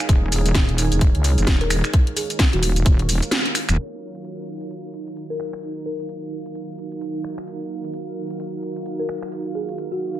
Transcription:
0.00 3.74 D#4 medium
0.00 3.77 D#4 medium
0.00 3.77 G#4 medium
0.00 3.78 A#4 medium
0.00 3.81 C#5 medium
0.00 3.74 F5 medium
0.09 0.30 D#1 medium
0.09 kick loud
0.09 closed hi-hat medium
0.09 shaker soft
0.32 0.67 D#1 loud
0.32 open hi-hat loud
0.32 shaker medium
0.46 closed hi-hat medium
0.46 shaker soft
0.55 kick loud
0.55 snare loud
0.55 closed hi-hat medium
0.55 shaker soft
0.69 0.90 D#1 loud
0.69 closed hi-hat soft
0.78 open hi-hat loud
0.78 shaker medium
0.92 1.13 D#1 loud
0.92 closed hi-hat medium
0.92 shaker soft
1.01 kick loud
1.01 closed hi-hat medium
1.01 shaker soft
1.15 1.36 C#2 loud
1.15 closed hi-hat soft
1.24 open hi-hat loud
1.24 shaker medium
1.38 1.46 F#1 loud
1.38 closed hi-hat soft
1.38 shaker soft
1.47 1.82 D#1 loud
1.47 kick loud
1.47 snare loud
1.47 closed hi-hat medium
1.47 shaker soft
1.61 2.15 A#4 medium
1.61 closed hi-hat soft
1.70 finger snap medium
1.70 open hi-hat loud
1.70 shaker medium
1.84 finger snap medium
1.84 closed hi-hat soft
1.84 shaker soft
1.94 kick loud
1.94 closed hi-hat medium
1.94 shaker soft
2.07 closed hi-hat soft
2.17 2.51 G#4 medium
2.17 open hi-hat loud
2.17 shaker medium
2.30 closed hi-hat medium
2.30 shaker soft
2.39 kick loud
2.39 snare loud
2.39 closed hi-hat medium
2.39 shaker soft
2.53 2.84 D#1 loud
2.53 2.86 F#4 medium
2.53 closed hi-hat soft
2.63 open hi-hat loud
2.63 shaker medium
2.76 closed hi-hat medium
2.76 shaker soft
2.86 3.20 D#1 loud
2.86 kick loud
2.86 closed hi-hat medium
2.86 shaker soft
2.99 closed hi-hat soft
3.09 open hi-hat loud
3.09 shaker medium
3.22 closed hi-hat soft
3.22 shaker soft
3.31 snare loud
3.31 closed hi-hat medium
3.31 shaker soft
3.46 closed hi-hat soft
3.55 finger snap medium
3.55 open hi-hat loud
3.55 shaker medium
3.69 3.77 D#1 loud
3.69 finger snap medium
3.69 closed hi-hat soft
3.69 shaker soft
3.78 10.20 D#4 medium
3.78 10.20 F#4 medium
3.78 10.20 F5 medium
3.78 closed hi-hat medium
3.78 crash medium
4.15 closed hi-hat soft
4.24 closed hi-hat medium
4.47 10.20 A#4 medium
4.61 closed hi-hat soft
4.70 closed hi-hat medium
4.94 closed hi-hat soft
5.07 closed hi-hat soft
5.17 10.20 F5 medium
5.17 closed hi-hat medium
5.30 5.84 A#4 medium
5.40 finger snap medium
5.53 finger snap medium
5.53 closed hi-hat soft
5.63 closed hi-hat medium
5.86 6.51 A#4 medium
6.00 closed hi-hat soft
6.09 closed hi-hat medium
6.46 closed hi-hat soft
6.55 closed hi-hat medium
6.78 closed hi-hat soft
6.92 closed hi-hat soft
7.01 closed hi-hat medium
7.24 finger snap medium
7.38 finger snap medium
7.38 closed hi-hat soft
7.47 closed hi-hat medium
7.84 closed hi-hat soft
7.94 closed hi-hat medium
8.30 closed hi-hat soft
8.40 closed hi-hat medium
8.63 closed hi-hat soft
8.76 closed hi-hat soft
8.86 closed hi-hat medium
8.99 9.53 A#4 medium
9.09 finger snap medium
9.22 finger snap medium
9.22 closed hi-hat soft
9.32 closed hi-hat medium
9.55 9.89 G#4 medium
9.69 closed hi-hat soft
9.78 closed hi-hat medium
9.92 10.20 F#4 medium
10.15 closed hi-hat soft

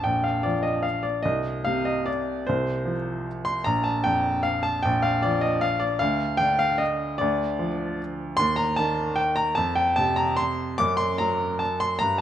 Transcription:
0.00 0.53 F2 soft
0.00 0.24 G5 medium
0.05 1.22 A#1 soft
0.24 0.44 F5 medium
0.43 1.26 F3 soft
0.43 0.64 D5 medium
0.63 0.84 D#5 medium
0.83 1.04 F5 medium
1.03 1.24 D5 medium
1.23 2.44 C2 soft
1.23 1.65 D#5 medium
1.65 2.94 C3 soft
1.65 1.86 F5 medium
1.85 2.07 D#5 medium
2.06 2.46 D5 medium
2.47 3.64 C2 medium
2.47 3.26 C5 medium
2.85 3.66 F3 soft
3.45 3.65 C6 medium
3.64 4.81 A#1 medium
3.64 3.84 A#5 medium
3.84 4.04 A5 medium
4.04 5.32 F2 soft
4.04 4.44 G5 medium
4.43 4.64 F5 medium
4.63 4.84 A5 medium
4.83 5.98 A#1 medium
4.83 5.03 G5 medium
5.02 5.23 F5 medium
5.22 6.02 F3 soft
5.22 5.43 D5 medium
5.41 5.62 D#5 medium
5.61 5.81 F5 medium
5.80 6.00 D5 medium
5.99 7.17 D2 medium
5.99 6.39 F5 medium
6.37 7.66 D3 soft
6.37 6.59 G5 medium
6.59 6.80 F5 medium
6.78 7.19 D#5 medium
7.18 8.36 D2 medium
7.18 7.98 D5 medium
7.59 8.39 F3 soft
8.37 9.54 D#2 medium
8.37 8.57 C6 loud
8.56 8.77 A#5 medium
8.76 9.58 D#3 soft
8.76 9.17 A5 medium
9.16 9.37 G5 medium
9.36 9.56 A#5 medium
9.55 10.76 F2 medium
9.55 9.76 A5 medium
9.75 9.97 G5 medium
9.96 10.80 C3 soft
9.96 10.17 A5 medium
10.16 10.38 A#5 medium
10.37 10.79 C6 medium
10.78 11.96 F#2 medium
10.78 10.99 D6 medium
10.97 11.19 C6 medium
11.18 12.00 F#3 soft
11.18 11.60 A#5 medium
11.59 11.80 A5 medium
11.80 12.00 C6 medium
11.99 12.21 G2 medium
11.99 12.19 A#5 medium

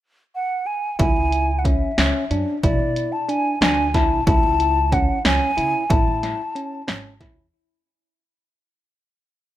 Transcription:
0.35 0.68 F#5 medium
0.66 1.00 G#5 medium
0.99 1.12 C#2 medium
0.99 1.50 E4 medium
0.99 1.60 G#5 medium
0.99 kick medium
0.99 closed hi-hat medium
1.16 1.79 C#2 medium
1.32 closed hi-hat medium
1.59 1.67 F#5 soft
1.65 1.90 C#4 medium
1.65 2.31 E5 medium
1.65 kick medium
1.65 closed hi-hat medium
1.98 2.10 C#2 medium
1.98 2.23 C#4 medium
1.98 snare medium
1.98 closed hi-hat medium
2.31 2.43 F#2 medium
2.31 2.56 D4 medium
2.31 closed hi-hat medium
2.63 2.76 B1 medium
2.63 3.14 E4 medium
2.63 3.14 D5 medium
2.63 kick medium
2.63 closed hi-hat medium
2.79 3.05 B2 medium
2.96 closed hi-hat medium
3.12 3.31 A5 medium
3.29 3.54 D4 medium
3.29 3.62 G#5 medium
3.29 closed hi-hat medium
3.61 4.10 D2 medium
3.61 3.87 D4 medium
3.61 3.96 G#5 medium
3.61 snare medium
3.61 closed hi-hat medium
3.94 4.20 E4 medium
3.94 4.27 A5 medium
3.94 kick medium
3.94 snare soft
3.94 closed hi-hat medium
4.10 4.23 B1 medium
4.27 4.40 C#2 medium
4.27 4.78 E4 medium
4.27 4.94 A5 loud
4.27 kick loud
4.27 closed hi-hat medium
4.43 5.06 C#2 medium
4.60 closed hi-hat medium
4.92 5.17 C#4 medium
4.92 5.25 F#5 medium
4.92 kick medium
4.92 closed hi-hat medium
5.25 5.38 C#2 medium
5.25 5.50 C#4 medium
5.25 5.93 G#5 loud
5.25 snare medium
5.25 closed hi-hat medium
5.57 5.70 C#3 medium
5.57 5.83 E4 medium
5.57 closed hi-hat medium
5.90 6.03 A1 medium
5.90 6.41 E4 medium
5.90 7.21 A5 medium
5.90 kick loud
5.90 closed hi-hat medium
6.07 6.32 A2 medium
6.23 snare soft
6.23 closed hi-hat medium
6.55 6.81 C#4 medium
6.55 closed hi-hat medium
6.88 7.37 G#1 medium
6.88 7.13 C#4 medium
6.88 snare loud
6.88 closed hi-hat medium
7.21 7.46 E4 medium
7.21 kick medium
7.21 snare soft
7.21 closed hi-hat medium
7.37 7.50 E2 medium

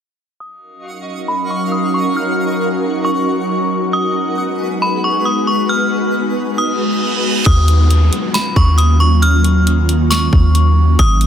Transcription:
0.40 3.90 F#3 medium
0.40 3.90 C#4 medium
0.40 3.90 D#4 medium
0.40 3.90 F#4 medium
0.40 3.90 A#4 loud
0.40 3.90 D#5 medium
0.40 2.15 F5 medium
0.40 3.90 C#6 medium
0.40 0.82 D#6 loud
1.28 1.49 B5 medium
1.50 1.71 C#6 medium
1.72 1.93 D#6 medium
1.94 2.15 C#6 medium
2.17 7.42 F#5 medium
2.17 2.58 F6 medium
3.05 3.89 C#6 medium
3.93 7.43 G#3 medium
3.93 7.43 B3 medium
3.93 7.43 D#4 medium
3.93 7.43 F#4 medium
3.93 7.43 G#4 medium
3.93 7.43 B4 medium
3.93 7.43 B5 medium
3.93 4.35 D#6 loud
4.82 5.03 B5 medium
5.04 5.25 C#6 medium
5.25 5.46 D#6 medium
5.47 5.68 C#6 medium
5.69 6.11 F6 loud
6.58 7.00 D#6 medium
6.58 reverse cymbal medium
7.46 8.10 D#2 loud
7.46 11.27 D#3 medium
7.46 11.27 F#3 medium
7.46 10.96 A#3 medium
7.46 10.95 C#4 medium
7.46 10.95 F4 loud
7.46 7.88 D#6 medium
7.46 kick loud
7.46 closed hi-hat medium
7.46 downlifter medium
7.68 closed hi-hat medium
7.91 closed hi-hat medium
8.13 closed hi-hat medium
8.34 8.55 B5 medium
8.34 snare loud
8.34 closed hi-hat medium
8.56 10.29 D#2 loud
8.56 8.77 C#6 medium
8.56 kick loud
8.78 8.99 D#6 medium
8.78 closed hi-hat medium
9.00 9.21 C#6 medium
9.22 9.64 F6 loud
9.22 closed hi-hat medium
9.44 closed hi-hat medium
9.67 closed hi-hat medium
9.89 closed hi-hat medium
10.10 10.95 C#6 medium
10.10 snare loud
10.10 closed hi-hat medium
10.33 10.96 D#2 loud
10.33 kick medium
10.55 closed hi-hat medium
10.99 11.27 G#1 loud
10.99 11.27 G#3 medium
10.99 11.27 B3 medium
10.99 11.27 F#4 loud
10.99 11.27 D#6 loud
10.99 kick loud
10.99 closed hi-hat medium
11.21 closed hi-hat medium

